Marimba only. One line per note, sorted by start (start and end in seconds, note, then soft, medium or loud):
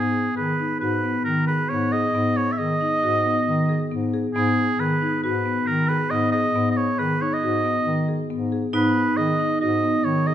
0.00 0.32 B3 medium
0.37 0.57 G#4 medium
0.59 0.79 D#4 medium
0.81 1.01 F#4 medium
1.04 1.43 B3 medium
1.48 1.68 G#4 medium
1.71 1.90 B3 medium
1.93 2.12 G#4 medium
2.15 2.54 B3 medium
2.59 2.78 G#4 medium
2.81 3.00 D#4 medium
3.03 3.23 F#4 medium
3.26 3.65 B3 medium
3.69 3.89 G#4 medium
3.92 4.11 B3 medium
4.13 4.33 G#4 medium
4.36 4.75 B3 medium
4.79 4.99 G#4 medium
5.02 5.21 D#4 medium
5.24 5.43 F#4 medium
5.46 5.84 B3 medium
5.89 6.09 G#4 medium
6.11 6.31 B3 medium
6.33 6.53 G#4 medium
6.56 6.94 B3 medium
6.99 7.19 G#4 medium
7.21 7.40 D#4 medium
7.43 7.62 F#4 medium
7.65 8.04 B3 medium
8.08 8.28 G#4 medium
8.30 8.50 B3 medium
8.52 8.72 G#4 medium
8.74 9.13 B3 medium
9.18 9.37 G#4 medium
9.39 9.59 D#4 medium
9.61 9.81 F#4 medium
9.83 10.23 B3 medium
10.28 10.34 G#4 medium